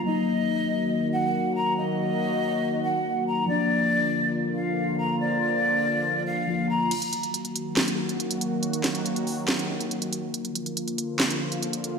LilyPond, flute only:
\new Staff \with { instrumentName = "Flute" } { \time 4/4 \key ees \minor \tempo 4 = 140 ees''2~ ees''8 ges''4 bes''8 | ees''2~ ees''8 ges''4 bes''8 | d''2~ d''8 f''4 bes''8 | d''2~ d''8 f''4 bes''8 |
r1 | r1 | r1 | }